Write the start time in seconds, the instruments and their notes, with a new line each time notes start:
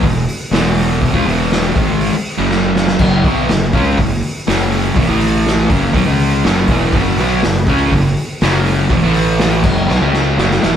0.03 fingered electric bass E1, distorted electric guitar E2 B2, kick, open hi-hat
0.28 open hi-hat
0.51 fingered electric bass E1, distorted electric guitar E2 B2 E3, snare, open hi-hat
0.78 open hi-hat
1.02 kick, open hi-hat
1.13 fingered electric bass C#2, distorted electric guitar C#3 G#3, kick
1.25 fingered electric bass E1, distorted electric guitar E2 B2 E3, open hi-hat
1.51 snare, open hi-hat
1.76 fingered electric bass G#1, distorted electric guitar G#2 D#3 G#3, kick, open hi-hat
2.01 open hi-hat
2.13 muted distorted electric guitar stroke, muted fingered electric bass stroke
2.25 open hi-hat
2.38 fingered electric bass F#1, distorted electric guitar F#2 C#3 F#3
2.51 snare
2.76 snare
2.88 snare
2.99 fingered electric bass F#1, distorted electric guitar F#2 C#3 F#3, kick, crash
3.24 fingered electric bass B1, distorted electric guitar B2 F#3 B3, kick, open hi-hat
3.49 fingered electric bass F#1, distorted electric guitar F#2 C#3, snare, open hi-hat
3.73 fingered electric bass C#2, distorted electric guitar C#3 G#3 C#4, kick, open hi-hat
3.98 fingered electric bass F#1, distorted electric guitar F#2 C#3, kick, open hi-hat
4.23 open hi-hat
4.47 fingered electric bass F#1, distorted electric guitar F#2 C#3 F#3, snare, open hi-hat
4.72 open hi-hat
4.96 fingered electric bass E1, distorted electric guitar E2 B2, kick, open hi-hat
5.08 fingered electric bass A1, distorted electric guitar A2 E3 A3
5.21 open hi-hat
5.46 snare, open hi-hat
5.69 fingered electric bass F#1, distorted electric guitar F#2 C#3 F#3, kick, open hi-hat
5.93 fingered electric bass B1, distorted electric guitar B2 F#3, kick, open hi-hat
6.06 fingered electric bass C#2, distorted electric guitar C#3 G#3 C#4
6.19 open hi-hat
6.44 fingered electric bass F#1, distorted electric guitar F#2 C#3 F#3, snare, open hi-hat
6.68 fingered electric bass E1, distorted electric guitar E2 B2 E3, kick, open hi-hat
6.92 fingered electric bass F#1, distorted electric guitar F#2 C#3 F#3, kick, open hi-hat
7.17 fingered electric bass B1, distorted electric guitar B2 F#3 B3, open hi-hat
7.42 fingered electric bass F#1, distorted electric guitar F#2 C#3, snare, open hi-hat
7.67 fingered electric bass C#2, distorted electric guitar C#3 G#3 C#4, kick, open hi-hat
7.92 fingered electric bass F#1, distorted electric guitar F#2 C#3, kick, open hi-hat
8.17 open hi-hat
8.41 fingered electric bass F#1, distorted electric guitar F#2 C#3 F#3, snare, open hi-hat
8.66 open hi-hat
8.90 fingered electric bass E1, distorted electric guitar E2 B2, kick, open hi-hat
9.02 fingered electric bass A1, distorted electric guitar A2 E3 A3
9.14 open hi-hat
9.39 snare, open hi-hat
9.63 fingered electric bass F#1, distorted electric guitar F#2 C#3 F#3, kick, snare, crash
9.88 fingered electric bass B1, distorted electric guitar B2 F#3, snare
10.01 fingered electric bass C#2, distorted electric guitar C#3 G#3 C#4
10.13 snare
10.37 fingered electric bass F#1, distorted electric guitar F#2 C#3 F#3, snare
10.51 snare
10.62 fingered electric bass E1, distorted electric guitar E2 B2 E3, snare